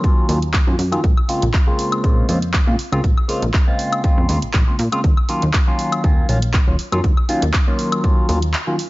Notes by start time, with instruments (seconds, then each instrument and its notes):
0.04 tine electric piano D#3 F#3 A#3 C#4 F4, kick, closed hi-hat
0.28 analog synth bass D#2, tine electric piano D#3 F#3 A#3 C#4 F4, open hi-hat
0.42 closed hi-hat
0.54 kick, clap, closed hi-hat
0.67 analog synth bass F#2, tine electric piano D#3 F#3 A#3 C#4 F4
0.79 analog synth bass F#2, open hi-hat
0.92 tine electric piano D#3 F#3 A#3 C#4 F4, closed hi-hat, high woodblock
1.04 analog synth bass A#1, kick, closed hi-hat
1.17 high woodblock
1.28 tine electric piano C#3 G#3 A#3 C4 F4, open hi-hat
1.42 analog synth bass A#1, closed hi-hat
1.54 kick, clap, closed hi-hat
1.67 tine electric piano C#3 G#3 A#3 C4 F4
1.79 open hi-hat
1.92 closed hi-hat, high woodblock
2.03 analog synth bass A#1, tine electric piano C#3 G#3 A#3 C4 F4, kick, closed hi-hat
2.28 analog synth bass F2, tine electric piano C#3 G#3 A#3 C4 F4, open hi-hat
2.42 closed hi-hat
2.54 kick, clap, closed hi-hat
2.67 analog synth bass A#2, tine electric piano C#3 G#3 A#3 C4 F4
2.79 open hi-hat
2.92 analog synth bass C#2, tine electric piano C#3 G#3 A#3 C4 F4, closed hi-hat, high woodblock
3.04 analog synth bass A#1, kick, closed hi-hat
3.18 high woodblock
3.28 tine electric piano C#3 G#3 A#3 C4 F4, open hi-hat
3.42 analog synth bass A#1, closed hi-hat
3.54 kick, clap, closed hi-hat
3.67 tine electric piano C#3 G#3 A#3 C4 F4
3.79 open hi-hat
3.93 closed hi-hat, high woodblock
4.04 tine electric piano C#3 G#3 A#3 C4 F4, kick, closed hi-hat
4.17 analog synth bass F2
4.29 analog synth bass D#2, tine electric piano C#3 G#3 A#3 C4 F4, open hi-hat
4.42 analog synth bass A#1, closed hi-hat
4.53 analog synth bass A#1, kick, clap, closed hi-hat
4.67 tine electric piano C#3 G#3 A#3 C4 F4
4.79 analog synth bass A#2, open hi-hat
4.92 tine electric piano C#3 G#3 A#3 C4 F4, closed hi-hat, high woodblock
5.04 analog synth bass D#2, kick, closed hi-hat
5.17 high woodblock
5.29 tine electric piano D#3 F#3 A#3 C#4 F4, open hi-hat
5.42 analog synth bass D#2, closed hi-hat
5.53 kick, clap, closed hi-hat
5.67 tine electric piano D#3 F#3 A#3 C#4 F4
5.79 open hi-hat
5.92 closed hi-hat, high woodblock
6.04 analog synth bass D#2, tine electric piano D#3 F#3 A#3 C#4 F4, kick, closed hi-hat
6.29 analog synth bass A#1, tine electric piano D#3 F#3 A#3 C#4 F4, open hi-hat
6.42 closed hi-hat
6.54 kick, clap, closed hi-hat
6.67 analog synth bass D#1, tine electric piano D#3 F#3 A#3 C#4 F4
6.79 open hi-hat
6.92 analog synth bass F#2, tine electric piano D#3 F#3 A#3 C#4 F4, closed hi-hat, high woodblock
7.04 analog synth bass D#2, kick, closed hi-hat
7.17 high woodblock
7.28 tine electric piano D#3 F#3 A#3 C#4 F4, open hi-hat
7.42 analog synth bass D#2, closed hi-hat
7.54 kick, clap, closed hi-hat
7.67 tine electric piano D#3 F#3 A#3 C#4 F4
7.79 open hi-hat
7.92 closed hi-hat, high woodblock
8.03 tine electric piano D#3 F#3 A#3 C#4 F4, kick, closed hi-hat
8.28 analog synth bass D#2, tine electric piano D#3 F#3 A#3 C#4 F4, open hi-hat
8.42 closed hi-hat
8.54 clap, closed hi-hat
8.67 tine electric piano D#3 F#3 A#3 C#4 F4
8.79 open hi-hat